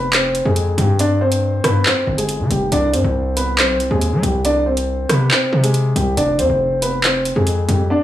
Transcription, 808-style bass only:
Already playing: F1
0.45 F2
0.78 G2
1.64 G2
2.07 G1
2.40 D3
2.50 F1
2.72 C2
2.94 G2
3.04 C2
3.58 B1
3.75 C2
3.91 D#2
4.12 G3
4.23 C2
5.09 C3
5.53 C3
5.96 C2
6.17 F1
6.39 F2
6.50 F1
7.36 F2
7.68 F2

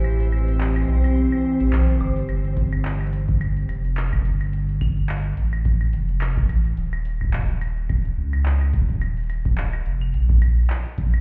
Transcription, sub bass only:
Already playing: A1
0.89 B1
1.60 A1
1.73 B1
2.01 G1
2.29 G1
3.69 F1
4.25 G1
5.37 A1
5.93 F1
6.49 A1
6.77 D#1
8.18 C#2
8.74 D#1
9.86 F1
10.14 A#1
10.98 A#1

